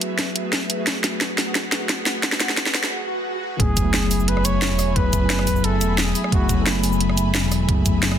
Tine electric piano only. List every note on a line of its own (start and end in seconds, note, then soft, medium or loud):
0.00 2.89 F#3 medium
0.00 2.90 A3 medium
0.00 2.91 B3 medium
0.00 2.92 E4 medium
0.00 2.93 G#4 medium
3.58 3.81 F#3 medium
3.58 3.83 A3 medium
3.58 3.83 B3 medium
3.58 3.84 E4 medium
3.58 3.84 G#4 medium
3.82 4.92 F#3 medium
3.82 4.93 A3 medium
3.82 4.94 B3 medium
3.87 4.95 E4 medium
3.87 4.96 G#4 loud
4.94 5.17 F#3 medium
4.94 5.19 A3 medium
4.94 5.20 B3 medium
4.94 5.20 E4 medium
4.94 5.21 G#4 medium
5.19 6.29 F#3 medium
5.19 6.30 A3 medium
5.19 6.30 B3 medium
5.24 6.31 E4 medium
5.24 6.32 G#5 medium
6.30 6.54 F#3 medium
6.30 6.55 A3 medium
6.30 6.56 B3 medium
6.30 6.56 E4 medium
6.30 6.57 G#4 medium
6.55 7.65 F#3 loud
6.55 7.66 A3 medium
6.55 7.67 B3 medium
6.60 7.68 E4 medium
6.60 7.68 A4 loud
7.67 7.90 F#3 medium
7.67 7.92 A3 medium
7.67 7.92 B3 medium
7.67 7.93 E4 medium
7.67 7.93 G#4 medium
7.91 8.19 F#3 medium
7.91 8.19 A3 medium
7.91 8.19 B3 medium
7.97 8.19 E4 medium
7.97 8.19 G#4 medium